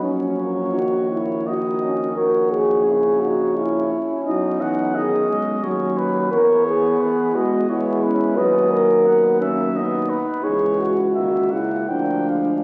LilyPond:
<<
  \new Staff \with { instrumentName = "Cornet" } { \time 3/4 \key b \major \tempo 4 = 86 cis''2 dis''4 | cis''4 cis''4. r8 | dis''8 fis''8 dis''4 cis''8 b'8 | cis''4 b'8 dis''8 cis''8 b'8 |
dis''4 fis''8 e''8 dis''8 b'8 | cis''8 r8 e''8 fis''8 g''8 f''8 | }
  \new Staff \with { instrumentName = "French horn section" } { \time 3/4 \key b \major cis'4 fis'8 e'8 fis'4 | ais'8 gis'4 fis'8 e'4 | dis'4 gis'8 r4. | ais'8 gis'4 fis'8 e'4 |
b'8 ais'4 cis'8 dis'4 | gis'8 fis'4 e'8 d'4 | }
  \new Staff \with { instrumentName = "Trombone section" } { \time 3/4 \key b \major cis'8 ais4. dis'8 cis'8 | fis'4 e'8 dis'8 cis'8 cis'8~ | cis'2. | b2 b8 cis'8~ |
cis'4 b8 ais8 b4 | gis4 ais4 ais8 aes8 | }
  \new Staff \with { instrumentName = "Euphonium" } { \clef bass \time 3/4 \key b \major fis4 dis2~ | dis4 cis4. r8 | fis8 e8 dis8 gis8 fis4 | e4 e8 gis8 gis4 |
fis2~ fis8 r8 | e4 dis8 cis8 f4 | }
  \new Staff \with { instrumentName = "Tuba" } { \clef bass \time 3/4 \key b \major ais,,2. | ais,,2~ ais,,8 r8 | b,,2 dis,4 | e,2. |
dis,2~ dis,8 r8 | cis,2 d,4 | }
>>